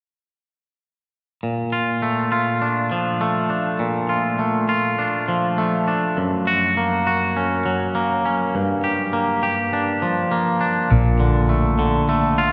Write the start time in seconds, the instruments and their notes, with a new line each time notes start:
1.43 clean electric guitar A#2
1.72 clean electric guitar F4
2.02 clean electric guitar A3
2.32 clean electric guitar F4
2.62 clean electric guitar D4
2.92 clean electric guitar F3
3.21 clean electric guitar A3
3.50 clean electric guitar D4
3.79 clean electric guitar A#2
4.09 clean electric guitar F4
4.39 clean electric guitar A3
4.69 clean electric guitar F4
4.99 clean electric guitar D4
5.28 clean electric guitar F3
5.58 clean electric guitar A3
5.88 clean electric guitar D4
6.17 clean electric guitar F#2
6.47 clean electric guitar F#4
6.77 clean electric guitar A#3
7.07 clean electric guitar F#4
7.37 clean electric guitar C#4
7.66 clean electric guitar F#3
7.95 clean electric guitar A#3
8.25 clean electric guitar C#4
8.55 clean electric guitar G2
8.84 clean electric guitar G4
9.13 clean electric guitar A#3
9.43 clean electric guitar G4
9.73 clean electric guitar D4
10.02 clean electric guitar F3
10.31 clean electric guitar A#3
10.61 clean electric guitar D4
10.91 fingered electric bass A#1, clean electric guitar A#2
11.20 clean electric guitar D3
11.49 clean electric guitar A3
11.79 clean electric guitar D3
12.09 clean electric guitar A3
12.38 clean electric guitar F4